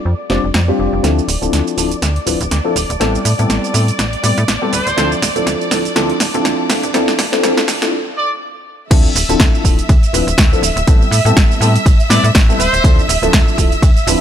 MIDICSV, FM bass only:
0, 0, Header, 1, 2, 480
1, 0, Start_track
1, 0, Tempo, 491803
1, 1016, Time_signature, 4, 2, 24, 8
1, 13867, End_track
2, 0, Start_track
2, 0, Title_t, "FM bass"
2, 0, Program_c, 0, 39
2, 52, Note_on_c, 0, 41, 96
2, 140, Note_off_c, 0, 41, 0
2, 293, Note_on_c, 0, 29, 96
2, 381, Note_off_c, 0, 29, 0
2, 430, Note_on_c, 0, 29, 80
2, 497, Note_off_c, 0, 29, 0
2, 533, Note_on_c, 0, 41, 94
2, 698, Note_off_c, 0, 41, 0
2, 773, Note_on_c, 0, 29, 89
2, 861, Note_off_c, 0, 29, 0
2, 908, Note_on_c, 0, 29, 83
2, 976, Note_off_c, 0, 29, 0
2, 1010, Note_on_c, 0, 38, 93
2, 1177, Note_off_c, 0, 38, 0
2, 1249, Note_on_c, 0, 26, 92
2, 1339, Note_off_c, 0, 26, 0
2, 1386, Note_on_c, 0, 26, 76
2, 1455, Note_off_c, 0, 26, 0
2, 1493, Note_on_c, 0, 38, 84
2, 1581, Note_off_c, 0, 38, 0
2, 1733, Note_on_c, 0, 26, 83
2, 1898, Note_off_c, 0, 26, 0
2, 1973, Note_on_c, 0, 38, 97
2, 2139, Note_off_c, 0, 38, 0
2, 2213, Note_on_c, 0, 26, 92
2, 2301, Note_off_c, 0, 26, 0
2, 2348, Note_on_c, 0, 26, 98
2, 2416, Note_off_c, 0, 26, 0
2, 2452, Note_on_c, 0, 38, 86
2, 2540, Note_off_c, 0, 38, 0
2, 2691, Note_on_c, 0, 26, 89
2, 2780, Note_off_c, 0, 26, 0
2, 2827, Note_on_c, 0, 26, 90
2, 2896, Note_off_c, 0, 26, 0
2, 2932, Note_on_c, 0, 33, 96
2, 3098, Note_off_c, 0, 33, 0
2, 3171, Note_on_c, 0, 45, 94
2, 3260, Note_off_c, 0, 45, 0
2, 3309, Note_on_c, 0, 45, 78
2, 3377, Note_off_c, 0, 45, 0
2, 3412, Note_on_c, 0, 33, 87
2, 3500, Note_off_c, 0, 33, 0
2, 3650, Note_on_c, 0, 45, 84
2, 3817, Note_off_c, 0, 45, 0
2, 3893, Note_on_c, 0, 33, 96
2, 4058, Note_off_c, 0, 33, 0
2, 4133, Note_on_c, 0, 45, 91
2, 4221, Note_off_c, 0, 45, 0
2, 4271, Note_on_c, 0, 45, 102
2, 4337, Note_off_c, 0, 45, 0
2, 4373, Note_on_c, 0, 33, 81
2, 4461, Note_off_c, 0, 33, 0
2, 4615, Note_on_c, 0, 26, 93
2, 4702, Note_off_c, 0, 26, 0
2, 4748, Note_on_c, 0, 26, 93
2, 4816, Note_off_c, 0, 26, 0
2, 4855, Note_on_c, 0, 38, 102
2, 5020, Note_off_c, 0, 38, 0
2, 5093, Note_on_c, 0, 26, 96
2, 5181, Note_off_c, 0, 26, 0
2, 5229, Note_on_c, 0, 26, 79
2, 5296, Note_off_c, 0, 26, 0
2, 5331, Note_on_c, 0, 38, 84
2, 5420, Note_off_c, 0, 38, 0
2, 5574, Note_on_c, 0, 26, 87
2, 5739, Note_off_c, 0, 26, 0
2, 5815, Note_on_c, 0, 38, 103
2, 5979, Note_off_c, 0, 38, 0
2, 6058, Note_on_c, 0, 26, 96
2, 6143, Note_off_c, 0, 26, 0
2, 6192, Note_on_c, 0, 26, 107
2, 6258, Note_off_c, 0, 26, 0
2, 6298, Note_on_c, 0, 38, 82
2, 6383, Note_off_c, 0, 38, 0
2, 6535, Note_on_c, 0, 29, 91
2, 6622, Note_off_c, 0, 29, 0
2, 6669, Note_on_c, 0, 29, 94
2, 6737, Note_off_c, 0, 29, 0
2, 6774, Note_on_c, 0, 41, 97
2, 6939, Note_off_c, 0, 41, 0
2, 7014, Note_on_c, 0, 29, 97
2, 7101, Note_off_c, 0, 29, 0
2, 7150, Note_on_c, 0, 29, 82
2, 7217, Note_off_c, 0, 29, 0
2, 7257, Note_on_c, 0, 41, 91
2, 7343, Note_off_c, 0, 41, 0
2, 7493, Note_on_c, 0, 29, 90
2, 7659, Note_off_c, 0, 29, 0
2, 8695, Note_on_c, 0, 38, 101
2, 8859, Note_off_c, 0, 38, 0
2, 8934, Note_on_c, 0, 26, 102
2, 9021, Note_off_c, 0, 26, 0
2, 9067, Note_on_c, 0, 26, 84
2, 9136, Note_off_c, 0, 26, 0
2, 9173, Note_on_c, 0, 38, 94
2, 9261, Note_off_c, 0, 38, 0
2, 9413, Note_on_c, 0, 26, 88
2, 9578, Note_off_c, 0, 26, 0
2, 9653, Note_on_c, 0, 38, 102
2, 9741, Note_off_c, 0, 38, 0
2, 9891, Note_on_c, 0, 26, 103
2, 9980, Note_off_c, 0, 26, 0
2, 10024, Note_on_c, 0, 26, 85
2, 10094, Note_off_c, 0, 26, 0
2, 10134, Note_on_c, 0, 38, 96
2, 10299, Note_off_c, 0, 38, 0
2, 10366, Note_on_c, 0, 26, 91
2, 10457, Note_off_c, 0, 26, 0
2, 10503, Note_on_c, 0, 26, 87
2, 10574, Note_off_c, 0, 26, 0
2, 10614, Note_on_c, 0, 33, 100
2, 10779, Note_off_c, 0, 33, 0
2, 10845, Note_on_c, 0, 45, 102
2, 10937, Note_off_c, 0, 45, 0
2, 10980, Note_on_c, 0, 45, 83
2, 11052, Note_off_c, 0, 45, 0
2, 11093, Note_on_c, 0, 33, 90
2, 11181, Note_off_c, 0, 33, 0
2, 11327, Note_on_c, 0, 45, 93
2, 11496, Note_off_c, 0, 45, 0
2, 11573, Note_on_c, 0, 33, 99
2, 11661, Note_off_c, 0, 33, 0
2, 11808, Note_on_c, 0, 45, 104
2, 11898, Note_off_c, 0, 45, 0
2, 11943, Note_on_c, 0, 45, 89
2, 12013, Note_off_c, 0, 45, 0
2, 12052, Note_on_c, 0, 33, 98
2, 12218, Note_off_c, 0, 33, 0
2, 12291, Note_on_c, 0, 26, 96
2, 12380, Note_off_c, 0, 26, 0
2, 12428, Note_on_c, 0, 26, 84
2, 12496, Note_off_c, 0, 26, 0
2, 12531, Note_on_c, 0, 38, 100
2, 12698, Note_off_c, 0, 38, 0
2, 12772, Note_on_c, 0, 26, 102
2, 12860, Note_off_c, 0, 26, 0
2, 12905, Note_on_c, 0, 26, 83
2, 12974, Note_off_c, 0, 26, 0
2, 13012, Note_on_c, 0, 38, 89
2, 13100, Note_off_c, 0, 38, 0
2, 13252, Note_on_c, 0, 26, 91
2, 13418, Note_off_c, 0, 26, 0
2, 13492, Note_on_c, 0, 38, 98
2, 13580, Note_off_c, 0, 38, 0
2, 13730, Note_on_c, 0, 26, 109
2, 13819, Note_off_c, 0, 26, 0
2, 13867, End_track
0, 0, End_of_file